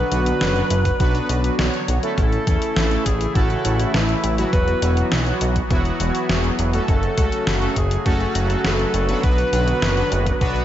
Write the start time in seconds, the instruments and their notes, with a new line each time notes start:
Already playing: supersaw synth D3 F#3 B3 F#4, alto saxophone B4
0.12 analog synth bass B1, analog polysynth B3 D4 F#4 B4, closed hi-hat
0.26 closed hi-hat
0.41 analog synth bass F#1, snare, closed hi-hat
0.56 analog polysynth B3 D4 F#4 B4, closed hi-hat
0.70 analog synth bass F#1, closed hi-hat
0.85 kick, closed hi-hat
1.00 analog synth bass B1, analog polysynth B3 D4 F#4 B4, kick, closed hi-hat
1.15 closed hi-hat
1.29 analog synth bass B1, closed hi-hat
1.44 closed hi-hat
1.59 analog synth bass B1, analog polysynth B3 D4 F#4 C#5, snare, closed hi-hat
1.74 closed hi-hat
1.88 analog synth bass B1, closed hi-hat
2.03 analog polysynth A3 C#4 E4 A4, closed hi-hat
2.18 analog synth bass A1, supersaw synth C#3 E3 A3 E4, alto saxophone A4, kick, closed hi-hat
2.32 closed hi-hat
2.47 analog synth bass E2, analog polysynth A3 C#4 E4 A4, kick, closed hi-hat
2.62 closed hi-hat
2.76 analog synth bass A1, snare, closed hi-hat
2.91 analog polysynth A3 C#4 E4 A4, closed hi-hat
3.05 analog synth bass A1, alto saxophone G#4, kick, closed hi-hat
3.21 closed hi-hat
3.35 analog synth bass A1, analog polysynth A3 C#4 E4 A4, alto saxophone F#4, kick, closed hi-hat
3.50 closed hi-hat
3.65 analog synth bass A1, closed hi-hat
3.80 closed hi-hat
3.94 analog synth bass A1, analog polysynth A3 C#4 E4 B4, alto saxophone E4, snare, closed hi-hat
4.09 closed hi-hat
4.24 analog synth bass A1, closed hi-hat
4.38 analog polysynth F#3 B3 E4 F#4, closed hi-hat
4.53 analog synth bass E1, supersaw synth F#3 B3 F#4, alto saxophone B4, kick, closed hi-hat
4.68 closed hi-hat
4.82 analog synth bass E1, analog polysynth F#3 B3 E4 F#4, closed hi-hat
4.97 closed hi-hat
5.12 analog synth bass B1, snare, closed hi-hat
5.26 analog polysynth F#3 B3 E4 F#4, closed hi-hat
5.41 analog synth bass B1, closed hi-hat
5.56 kick, closed hi-hat
5.71 analog synth bass E1, analog polysynth F#3 B3 E4 F#4, kick, closed hi-hat
5.85 closed hi-hat
6.00 analog synth bass E1, closed hi-hat
6.15 closed hi-hat
6.29 analog synth bass E1, analog polysynth F#3 B3 E4 G#4, snare, closed hi-hat
6.44 closed hi-hat
6.59 analog synth bass E1, closed hi-hat
6.73 analog polysynth A3 C#4 F#4 A4, closed hi-hat
6.88 analog synth bass F#1, supersaw synth C#3 F#3 A3 F#4, alto saxophone A4, kick, closed hi-hat
7.03 closed hi-hat
7.18 analog synth bass C#2, analog polysynth A3 C#4 F#4 A4, kick, closed hi-hat
7.32 closed hi-hat
7.47 analog synth bass F#1, snare, closed hi-hat
7.62 analog polysynth A3 C#4 F#4 A4, closed hi-hat
7.76 analog synth bass F#1, alto saxophone G#4, kick, closed hi-hat
7.91 closed hi-hat
8.06 analog synth bass F#1, analog polysynth A3 C#4 F#4 A4, alto saxophone F#4, kick, closed hi-hat
8.20 closed hi-hat
8.35 analog synth bass F#1, closed hi-hat
8.50 closed hi-hat
8.65 analog synth bass F#1, analog polysynth A3 C#4 F#4 B4, alto saxophone A4, snare, closed hi-hat
8.79 closed hi-hat
8.94 analog synth bass F#1, closed hi-hat
9.09 analog polysynth B3 D4 F#4 B4, closed hi-hat
9.23 analog synth bass B1, supersaw synth D3 B3, alto saxophone B4, kick, closed hi-hat
9.38 closed hi-hat
9.53 analog synth bass B1, analog polysynth B3 D4 F#4 B4, closed hi-hat
9.68 closed hi-hat
9.82 analog synth bass F#1, snare, closed hi-hat
9.97 analog polysynth B3 D4 F#4 B4, closed hi-hat
10.12 analog synth bass F#1, closed hi-hat
10.26 kick, closed hi-hat
10.41 analog synth bass B1, analog polysynth B3 D4 F#4 B4, kick, closed hi-hat
10.56 closed hi-hat